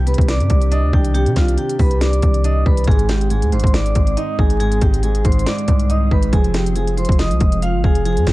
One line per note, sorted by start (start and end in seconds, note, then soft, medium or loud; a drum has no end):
0.00 0.15 C2 loud
0.00 0.07 C3 medium
0.00 6.29 D#3 medium
0.00 8.33 C4 medium
0.00 2.84 D4 medium
0.00 2.84 G4 medium
0.07 0.27 C3 medium
0.07 0.25 B4 medium
0.07 0.25 B5 medium
0.07 closed hi-hat medium
0.14 closed hi-hat medium
0.18 0.41 C2 loud
0.18 kick loud
0.18 closed hi-hat medium
0.28 0.49 C3 medium
0.28 0.69 D5 medium
0.28 0.69 D6 medium
0.28 snare loud
0.28 closed hi-hat medium
0.40 0.50 G2 medium
0.40 closed hi-hat medium
0.50 0.84 C2 loud
0.50 1.13 C3 medium
0.50 kick medium
0.50 closed hi-hat medium
0.61 closed hi-hat medium
0.71 0.92 D4 loud
0.71 0.89 D#5 medium
0.71 0.90 D#6 medium
0.71 closed hi-hat medium
0.83 0.93 D2 loud
0.93 1.28 C2 loud
0.93 2.01 D4 medium
0.93 1.11 G4 medium
0.93 1.12 G5 medium
0.93 kick loud
1.05 closed hi-hat medium
1.15 1.35 C3 medium
1.15 1.33 G4 loud
1.15 1.33 G5 medium
1.15 closed hi-hat loud
1.26 1.36 C3 loud
1.26 closed hi-hat medium
1.36 1.57 C2 loud
1.36 1.57 C3 medium
1.36 1.54 F4 medium
1.36 1.55 F5 medium
1.36 kick medium
1.36 snare loud
1.36 closed hi-hat medium
1.48 closed hi-hat medium
1.58 1.78 C3 medium
1.58 1.76 G4 medium
1.58 1.76 G5 medium
1.58 closed hi-hat medium
1.70 closed hi-hat medium
1.79 2.21 C2 loud
1.79 2.00 C3 medium
1.79 1.98 B4 medium
1.79 1.98 B5 medium
1.79 kick loud
1.79 open hi-hat medium
1.91 closed hi-hat medium
2.01 2.21 C3 medium
2.01 2.42 D5 medium
2.01 2.42 D6 medium
2.01 snare loud
2.01 closed hi-hat medium
2.13 closed hi-hat medium
2.22 2.64 C2 loud
2.22 2.88 C3 medium
2.22 kick medium
2.22 closed hi-hat medium
2.34 closed hi-hat medium
2.44 2.65 D4 loud
2.44 2.62 D#5 medium
2.44 2.63 D#6 medium
2.44 closed hi-hat medium
2.66 2.87 C2 loud
2.66 2.88 D4 medium
2.66 2.84 B4 medium
2.66 2.84 B5 medium
2.66 kick medium
2.77 closed hi-hat medium
2.84 3.44 G#1 loud
2.84 3.08 G#2 medium
2.84 8.33 G#3 medium
2.84 3.05 G#4 loud
2.84 8.33 G#4 medium
2.84 3.06 G#5 medium
2.84 kick loud
2.84 closed hi-hat medium
2.91 closed hi-hat soft
2.99 closed hi-hat medium
3.09 3.29 G#2 medium
3.09 3.27 G4 medium
3.09 3.27 G5 medium
3.09 snare loud
3.09 closed hi-hat medium
3.21 closed hi-hat medium
3.30 3.51 G#2 medium
3.30 3.49 G#4 medium
3.30 3.49 G#5 medium
3.30 closed hi-hat medium
3.42 3.54 D#2 loud
3.42 closed hi-hat medium
3.52 3.63 G#1 loud
3.52 3.72 G#2 loud
3.52 3.71 C5 medium
3.52 3.71 C6 medium
3.52 closed hi-hat medium
3.60 closed hi-hat medium
3.64 3.94 G#1 loud
3.64 kick loud
3.64 closed hi-hat medium
3.74 3.94 G#2 medium
3.74 4.14 D5 medium
3.74 4.15 D6 medium
3.74 snare loud
3.74 closed hi-hat medium
3.86 closed hi-hat medium
3.95 4.16 G#1 loud
3.95 4.59 G#2 medium
3.95 kick medium
3.95 closed hi-hat medium
4.07 closed hi-hat medium
4.17 4.37 D#4 loud
4.17 4.35 D#5 medium
4.17 4.35 D#6 medium
4.17 closed hi-hat medium
4.39 4.80 G#1 loud
4.39 5.47 D#4 medium
4.39 4.57 G#4 medium
4.39 4.57 G#5 medium
4.39 kick loud
4.50 closed hi-hat medium
4.60 4.80 G#2 medium
4.60 4.78 G#4 loud
4.60 4.78 G#5 medium
4.60 closed hi-hat loud
4.72 closed hi-hat medium
4.81 5.23 G#1 loud
4.81 5.02 G#2 medium
4.81 5.00 G4 medium
4.81 5.00 G5 medium
4.81 kick loud
4.81 closed hi-hat medium
4.94 closed hi-hat medium
5.03 5.23 G#2 medium
5.03 5.21 G#4 medium
5.03 5.22 G#5 medium
5.03 closed hi-hat medium
5.15 closed hi-hat medium
5.25 5.46 G#1 loud
5.25 5.45 G#2 medium
5.25 5.43 C5 medium
5.25 5.43 C6 medium
5.25 kick loud
5.25 closed hi-hat medium
5.25 open hi-hat medium
5.32 closed hi-hat medium
5.39 closed hi-hat medium
5.46 5.67 G#2 medium
5.46 5.87 D5 medium
5.46 5.87 D6 medium
5.46 snare loud
5.46 closed hi-hat medium
5.58 closed hi-hat medium
5.68 6.10 C2 loud
5.68 6.33 G#2 medium
5.68 kick loud
5.68 closed hi-hat medium
5.79 closed hi-hat medium
5.90 6.10 D#4 medium
5.90 6.08 D#5 medium
5.90 6.08 D#6 medium
5.90 closed hi-hat medium
6.11 6.32 G#1 loud
6.11 6.33 D#4 medium
6.11 6.29 B4 medium
6.11 6.30 B5 medium
6.11 kick medium
6.23 closed hi-hat medium
6.33 7.06 F1 loud
6.33 6.53 F3 medium
6.33 8.33 F3 medium
6.33 6.51 G#4 loud
6.33 6.51 G#5 medium
6.33 kick loud
6.33 closed hi-hat loud
6.44 closed hi-hat medium
6.54 6.75 F3 medium
6.54 6.72 G4 medium
6.54 6.73 G5 medium
6.54 snare loud
6.54 closed hi-hat medium
6.66 closed hi-hat medium
6.76 6.96 F3 medium
6.76 6.94 G#4 medium
6.76 6.94 G#5 medium
6.76 closed hi-hat medium
6.87 closed hi-hat medium
6.97 7.18 F3 medium
6.97 7.15 C5 medium
6.97 7.16 C6 medium
6.97 closed hi-hat medium
7.05 closed hi-hat medium
7.09 7.32 F1 loud
7.09 kick loud
7.09 closed hi-hat medium
7.19 7.39 F3 medium
7.19 7.59 D#5 medium
7.19 7.60 D#6 medium
7.19 snare loud
7.19 closed hi-hat medium
7.30 7.40 C2 medium
7.30 closed hi-hat medium
7.40 7.75 F1 loud
7.40 8.04 F3 medium
7.40 kick medium
7.40 closed hi-hat medium
7.52 closed hi-hat medium
7.62 7.81 F4 medium
7.62 7.80 F5 medium
7.62 7.82 F5 loud
7.62 closed hi-hat medium
7.74 7.83 G1 loud
7.84 8.18 F1 loud
7.84 8.02 G#4 medium
7.84 8.33 F5 medium
7.84 8.02 G#5 medium
7.84 kick loud
7.95 closed hi-hat medium
8.05 8.26 F3 medium
8.05 8.23 G#4 loud
8.05 8.24 G#5 medium
8.05 closed hi-hat loud
8.17 8.26 F2 loud
8.17 closed hi-hat medium
8.27 8.33 F1 loud
8.27 8.33 F3 medium
8.27 8.33 G4 medium
8.27 8.33 G5 medium
8.27 kick medium
8.27 snare loud
8.27 closed hi-hat medium